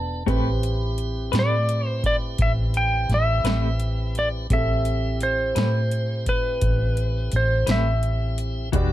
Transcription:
Already playing: E1 B3 D4 G4 A4 F#5 A5
0.26 A1 A3 C4 E4 G4 B4, kick, closed hi-hat
0.63 closed hi-hat
0.98 closed hi-hat
1.32 A2 A3 C4 G4 B4, snare, closed hi-hat
1.39 D5
1.69 closed hi-hat
1.87 C5
2.04 D5, kick, closed hi-hat
2.38 A1 E5, kick, closed hi-hat
2.74 G5, closed hi-hat
3.09 A1, snare, closed hi-hat
3.14 E5
3.44 A1 A3 C4 G4 B4, snare, closed hi-hat
3.80 closed hi-hat
4.15 D5, closed hi-hat
4.50 A1 C4 E4 G4 A4 E5, kick, closed hi-hat
4.85 closed hi-hat
5.21 C5, closed hi-hat
5.55 A2 A3 C4 G4 B4, snare, closed hi-hat
5.91 closed hi-hat
6.26 B4, kick, closed hi-hat
6.61 A1, kick, closed hi-hat
6.97 closed hi-hat
7.32 A1, closed hi-hat
7.36 C5
7.67 A1 A3 C4 G4 B4, snare, closed hi-hat
7.71 E5
8.03 closed hi-hat
8.38 closed hi-hat
8.72 E1 E3 G3 D4 F#4 G4 B4 D5, kick, closed hi-hat

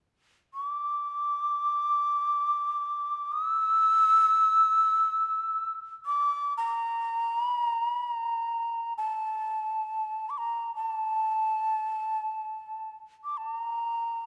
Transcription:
0.54 D6
3.32 D#6
3.43 E6
6.06 D6
6.57 A#5
7.41 B5
7.63 A#5
7.88 B5
8.11 A#5
8.98 A5
10.30 D6
10.38 A#5
10.75 A#5
10.87 A5
13.24 D6
13.37 A5
13.49 A#5

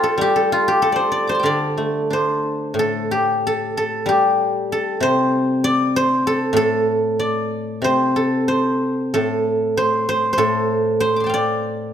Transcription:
Already playing: F4 G4 C5 D5 F5 G5
0.03 A4
0.18 G3 G4
0.36 A4
0.52 F4
0.68 G4
0.82 A4
0.92 C5 D5
1.12 D5
1.27 C5 D6
1.32 A5 C6
1.39 F5 G5
1.44 D3 D5
1.77 A3
2.10 D4 C5
2.74 A2
2.79 A4
3.11 G4
3.47 A4
3.77 A4
4.06 G3 G4
4.72 A4
5.00 C3 C5
5.64 D5
5.96 C5
6.27 A4
6.53 A2 A4
7.19 D5
7.82 C3 C5
8.16 A4
8.48 C5
9.14 A2 A4
9.77 C5
10.09 C5
10.33 C5
10.38 A2 A4
11.00 C5
11.16 C6 D6
11.24 G5 A5
11.29 F5
11.34 D5

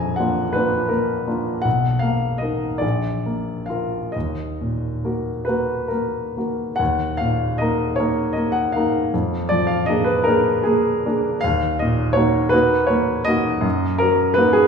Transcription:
Already playing: A#1 F2 G#5 A#5
0.16 A#3 D4 F#5
0.20 F4
0.53 A#3 D4 F4 B4
0.88 A#3 A#4
1.27 A#3 D4 F4
1.62 B1 F#5
1.99 A#3 F5
2.38 D#4 A#4 D#5
2.78 A#1 D5
3.26 A#3
3.66 F4 A#4 F5
4.12 D#2 D#5
4.61 A#2
5.04 A#3 F#4 A#4
5.45 A#3 F#4 B4
5.49 A#4
5.88 A#3 A#4
6.37 A#3 F#4 A#4
6.76 D#2 F#5
7.17 A#2 F5
7.58 A#3 D#4 A#4 D#5
7.96 A#3 C#5
8.00 D#4 A#4
8.33 D#5
8.37 A#3
8.52 F#5
8.72 A#3 A#4 F5
8.77 D#4
9.14 F2
9.49 F3 D5
9.67 F5
9.86 A#3 D4 D#5
9.90 G#4
10.04 B4
10.24 A#3 D4 A#4
10.28 G#4
10.63 A#3 G#4
11.06 A#3 D4 G#4
11.41 D#2 F5
11.79 A#2 D#5
12.13 A#3 F#4 C#5
12.17 D#4
12.49 A#3 D#4 B4
12.53 F#4
12.87 A#3 C#5
13.25 A#3 D#5
13.29 D#4 F#4
13.61 F#2
13.98 F#3 A#4
14.34 A#3 D#4 B4
14.39 F#4
14.53 G#4

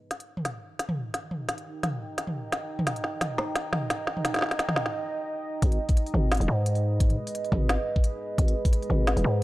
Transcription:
Already playing: G#3 G#4 B4 D#5
0.11 D#4, snare, closed hi-hat
0.20 closed hi-hat
0.26 A#5
0.35 D#5, mid tom
0.45 snare, closed hi-hat
0.60 G5
0.79 snare, closed hi-hat
0.89 mid tom
1.14 snare, closed hi-hat
1.31 mid tom
1.49 snare, closed hi-hat
1.58 closed hi-hat
1.83 snare, closed hi-hat, mid tom
2.18 snare, closed hi-hat
2.27 mid tom
2.52 snare, closed hi-hat
2.79 mid tom
2.87 snare, closed hi-hat
2.96 closed hi-hat
3.04 snare
3.21 snare, closed hi-hat, mid tom
3.38 snare
3.55 snare, closed hi-hat
3.73 snare, mid tom
3.90 snare, closed hi-hat
4.07 snare
4.17 mid tom
4.25 snare, closed hi-hat
4.34 snare, closed hi-hat
4.36 snare
4.39 snare
4.41 snare
4.44 snare
4.46 snare
4.49 snare
4.51 snare, closed hi-hat
4.59 snare, closed hi-hat
4.69 snare, mid tom
4.76 snare
4.86 snare
5.62 G#1 G#3, kick, closed hi-hat
5.72 closed hi-hat
5.89 G#4, kick, open hi-hat
5.97 closed hi-hat
6.06 open hi-hat
6.14 G#1 B4, mid tom
6.32 snare, closed hi-hat
6.35 closed hi-hat
6.37 D#1, closed hi-hat, mid tom, open hi-hat
6.48 G#2
6.66 closed hi-hat
6.75 open hi-hat
7.00 kick, closed hi-hat
7.10 closed hi-hat, mid tom
7.27 open hi-hat
7.35 closed hi-hat
7.45 open hi-hat
7.52 G#1, kick, mid tom
7.69 snare, closed hi-hat
7.96 kick
8.04 closed hi-hat
8.38 G#1, kick, closed hi-hat
8.48 closed hi-hat
8.65 kick, open hi-hat
8.73 closed hi-hat
8.82 open hi-hat
8.90 G#1, mid tom
9.07 snare, closed hi-hat
9.17 D#1, mid tom, open hi-hat
9.19 mid tom
9.22 G#2, mid tom

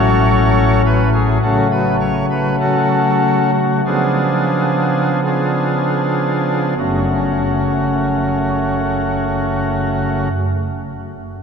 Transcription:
Already playing: A1 A2 F#3 A3 C#4 F#4 A4 C#5
0.86 B4
1.14 G#4
1.42 C#3 F#3 A3 C#4 F#4 A4
1.71 B4
2.00 C#5
2.30 B4
2.60 C#4 F#4 A4
3.53 F#4
3.86 C#3 F3 B3 D4 F4 G#4
5.25 D4 F4 G#4
6.77 F#1 F#2 C#3 A3 C#4 F#4

